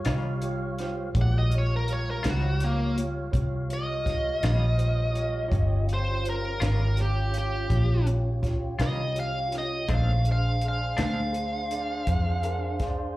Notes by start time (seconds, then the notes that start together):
Already playing: G3 C#5 F5
0.05 C2 D#3 G3 C#4 F4 G4 D#5, snare, closed hi-hat
0.41 F4 G4 C#5, closed hi-hat
0.79 F4 G4 C5, snare, closed hi-hat
1.14 A#1 G#3 F4 F#4 G4 C#5 D5, kick, closed hi-hat
1.21 F#5
1.38 D#5
1.50 G3 C#5 F5, closed hi-hat
1.54 F4 G4 C#5
1.58 C#5
1.76 A#4
1.88 F4 G4 C#5, closed hi-hat
1.93 C#5
2.11 A#4
2.23 C#2 D#3 G3 C#4 F4 G4 C5, snare, closed hi-hat
2.29 F#4
2.60 A#3 F4 G4 C#5, closed hi-hat
2.96 F4 G4 C#5, closed hi-hat
3.31 C2 F4 G4 C#5, kick, closed hi-hat
3.69 F4 G4 C#5, closed hi-hat
3.73 D#5
4.04 F4 G4 C#5, kick, closed hi-hat
4.08 snare
4.41 A#1 C#4 F4 G4 D#5, snare, closed hi-hat
4.45 D#3 G3
4.76 F4 G4 C5, closed hi-hat
5.13 F4 G4 C#5, closed hi-hat
5.48 G1 F4 G4 C#5, kick
5.52 C#4 F4 G4, closed hi-hat
5.85 F4 G4 C#5, closed hi-hat
5.94 C5
6.24 F4 G4 C5, closed hi-hat
6.30 A#4
6.60 G#1 D#3 G3 C#4 F4 G4 C#5, snare, closed hi-hat
6.66 A#4
6.96 F4 G4 C#5, closed hi-hat
7.02 G4
7.31 F4 G4 C#5, closed hi-hat
7.38 G4
7.68 A#1 F4 G4 C#5, kick, closed hi-hat
8.06 F4 G4 C#5, closed hi-hat
8.42 F4 G4 C#5, kick, snare, closed hi-hat
8.79 C2 D#3 G3 C#4 F4 G4 C#5, snare, closed hi-hat
8.83 D#5
9.15 F4 G4 C#5, closed hi-hat
9.20 F5
9.52 F4 G4 C#5, snare, closed hi-hat
9.58 D#5
9.88 A#1 A#2 G#3 A3 C4 D4 D#4 G#4 C5 C#5, kick, closed hi-hat
9.94 F5
10.25 D4 G#4 C5, closed hi-hat
10.32 F5
10.61 D4 G#4 D5, closed hi-hat
10.68 F5
10.97 D2 A#2 G#3 C4 D4 G#4 C5, snare, closed hi-hat
11.03 F5
11.32 D4 G#4 C5, closed hi-hat
11.71 D4 G#4 D5, closed hi-hat
12.07 F2 D4 G#4 C5, kick, closed hi-hat
12.43 D4 G#4 A#4, closed hi-hat
12.79 D4 G#4 D5, kick, snare, closed hi-hat